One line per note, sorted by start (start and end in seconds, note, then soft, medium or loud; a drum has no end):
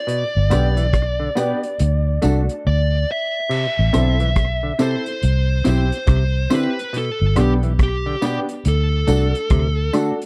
0.00 2.66 D5 medium
0.07 0.24 B2 medium
0.07 closed hi-hat medium
0.37 0.50 G1 loud
0.50 1.28 B1 medium
0.50 0.66 D3 medium
0.50 0.72 B3 medium
0.50 0.69 B3 medium
0.50 0.72 D4 medium
0.50 0.70 D4 medium
0.50 0.73 G4 loud
0.50 0.70 G4 medium
0.50 0.70 B4 medium
0.50 closed hi-hat medium
0.50 tambourine medium
0.50 high woodblock medium
0.77 0.87 E3 medium
0.77 closed hi-hat soft
0.93 kick loud
0.93 cross-stick loud
0.93 closed hi-hat medium
1.20 1.29 D3 medium
1.35 1.52 B2 medium
1.35 1.58 B3 medium
1.35 1.55 B3 medium
1.35 1.58 D4 medium
1.35 1.56 D4 medium
1.35 1.58 G4 medium
1.35 1.56 G4 medium
1.35 1.56 B4 medium
1.35 closed hi-hat medium
1.35 tambourine medium
1.63 1.70 D4 soft
1.63 1.70 G4 soft
1.63 closed hi-hat medium
1.79 2.18 D2 loud
1.79 closed hi-hat medium
2.22 2.47 C2 medium
2.22 2.44 A3 medium
2.22 2.41 A3 medium
2.22 2.44 D4 medium
2.22 2.41 D4 medium
2.22 2.44 F#4 loud
2.22 2.42 F#4 medium
2.22 2.42 A4 loud
2.22 closed hi-hat medium
2.22 tambourine medium
2.49 closed hi-hat soft
2.67 3.04 D2 medium
2.67 3.10 D5 medium
3.12 4.86 E5 loud
3.50 3.66 C3 medium
3.50 crash medium
3.79 3.93 A1 loud
3.93 4.71 B1 medium
3.93 4.10 D3 medium
3.93 4.15 C4 loud
3.93 4.12 C4 medium
3.93 4.15 E4 medium
3.93 4.13 E4 medium
3.93 4.15 A4 loud
3.93 4.13 A4 medium
3.93 4.13 C5 medium
3.93 closed hi-hat medium
3.93 tambourine soft
3.93 high woodblock medium
4.20 4.30 E3 medium
4.20 closed hi-hat soft
4.36 kick loud
4.36 cross-stick loud
4.36 closed hi-hat medium
4.63 4.73 D3 medium
4.79 4.95 C3 medium
4.79 5.01 C4 medium
4.79 4.98 C4 medium
4.79 5.01 E4 medium
4.79 4.98 E4 medium
4.79 5.01 A4 loud
4.79 4.99 A4 medium
4.79 4.99 C5 medium
4.79 5.68 C5 medium
4.79 closed hi-hat medium
4.79 tambourine medium
5.06 5.13 E4 soft
5.06 5.13 A4 soft
5.06 closed hi-hat medium
5.23 5.61 C2 loud
5.23 closed hi-hat medium
5.64 5.90 B1 medium
5.64 5.87 C4 medium
5.64 5.84 C4 medium
5.64 5.87 E4 medium
5.64 5.84 E4 medium
5.64 5.84 G4 medium
5.64 5.87 G4 loud
5.64 5.84 C5 medium
5.64 closed hi-hat medium
5.64 tambourine medium
5.69 6.54 C5 loud
5.92 closed hi-hat medium
6.07 6.46 C2 medium
6.07 6.24 C3 medium
6.07 kick loud
6.07 cross-stick loud
6.07 closed hi-hat loud
6.50 6.67 D3 medium
6.50 6.69 C4 medium
6.50 6.73 C4 medium
6.50 6.73 E4 medium
6.50 6.70 E4 medium
6.50 6.70 G4 loud
6.50 6.73 G4 medium
6.50 6.70 C5 medium
6.50 closed hi-hat medium
6.50 tambourine medium
6.50 high woodblock medium
6.55 6.97 B4 medium
6.79 closed hi-hat medium
6.93 7.10 B2 medium
6.93 closed hi-hat medium
6.98 7.36 A4 loud
7.21 7.35 G1 medium
7.36 8.13 B1 medium
7.36 7.53 D3 medium
7.36 7.58 B3 medium
7.36 7.55 B3 medium
7.36 7.55 D4 medium
7.36 7.58 D4 medium
7.36 7.59 G4 medium
7.36 7.56 G4 medium
7.36 7.56 B4 medium
7.36 closed hi-hat medium
7.36 tambourine soft
7.36 high woodblock medium
7.40 7.51 G4 medium
7.63 7.73 E3 medium
7.63 closed hi-hat soft
7.79 kick loud
7.79 cross-stick loud
7.79 closed hi-hat medium
7.83 8.24 G4 medium
8.06 8.16 D3 medium
8.21 8.38 B2 medium
8.21 8.44 B3 medium
8.21 8.41 B3 medium
8.21 8.44 D4 medium
8.21 8.41 D4 medium
8.21 8.44 G4 loud
8.21 8.42 G4 medium
8.21 8.37 G4 medium
8.21 8.42 B4 medium
8.21 closed hi-hat medium
8.21 tambourine medium
8.49 8.56 D4 soft
8.49 8.56 G4 soft
8.49 closed hi-hat medium
8.65 9.04 D2 medium
8.65 9.92 A4 medium
8.65 closed hi-hat loud
9.07 9.32 C2 medium
9.07 9.26 A3 medium
9.07 9.30 D4 medium
9.07 9.27 D4 loud
9.07 9.30 F#4 medium
9.07 9.27 F#4 medium
9.07 9.30 A4 loud
9.07 9.27 A4 loud
9.07 closed hi-hat medium
9.07 tambourine medium
9.35 closed hi-hat medium
9.50 9.89 D2 medium
9.50 9.67 C3 medium
9.50 kick loud
9.50 cross-stick loud
9.50 closed hi-hat medium
9.93 10.10 D3 medium
9.93 10.12 A3 medium
9.93 10.15 D4 medium
9.93 10.13 D4 medium
9.93 10.15 F#4 medium
9.93 10.13 F#4 loud
9.93 10.16 A4 medium
9.93 10.13 A4 medium
9.93 closed hi-hat medium
9.93 tambourine medium
9.93 high woodblock medium
10.22 closed hi-hat medium